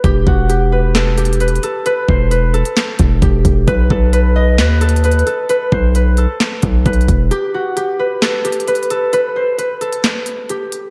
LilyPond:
<<
  \new Staff \with { instrumentName = "Harp" } { \time 4/4 \key b \phrygian \tempo 4 = 132 g'8 fis'8 g'8 b'8 a'8 g'8 b'8 a'8 | b'8 c''8 b'8 a'4. g'4 | b'8 a'8 b'8 dis''8 b'8 a'8 b'8 a'8 | b'8 c''8 b'8 a'4. b'4 |
g'8 fis'8 g'8 b'8 a'8 g'8 b'8 a'8 | b'8 c''8 b'8 a'4. g'4 | }
  \new Staff \with { instrumentName = "808-style bass" } { \clef bass \time 4/4 \key b \phrygian e,,8 e,,2. r8 | r8 e,,4~ e,,16 r8. e,,8 e,,8 e,,8 | b,,8 b,,4. dis,4. r8 | r8 b,,4~ b,,16 r8. b,,8 b,,8 e,,8 |
r1 | r1 | }
  \new DrumStaff \with { instrumentName = "Drums" } \drummode { \time 4/4 <hh bd>8 bd8 hh4 \tuplet 3/2 { <hc hh sn>16 r16 r16 hh16 hh16 hh16 hh16 hh16 hh16 hh16 r16 r16 } | hh8 bd8 hh8 hh16 hh16 <hc hh sn>8 <hh bd>8 <hh bd>8 <hh bd>8 | <hh bd>8 bd8 hh4 \tuplet 3/2 { <hc hh sn>16 r16 r16 hh16 hh16 hh16 hh16 hh16 hh16 hh16 r16 r16 } | hh8 bd8 hh8 hh8 <hc hh sn>8 <hh bd>8 \tuplet 3/2 { <hh bd>16 hh16 hh16 <hh bd>16 r16 r16 } |
hh4 hh4 \tuplet 3/2 { <hc hh sn>16 r16 r16 hh16 hh16 hh16 hh16 hh16 hh16 hh16 r16 r16 } | hh4 hh8 hh16 hh16 <hc hh sn>8 hh8 hh8 hh8 | }
>>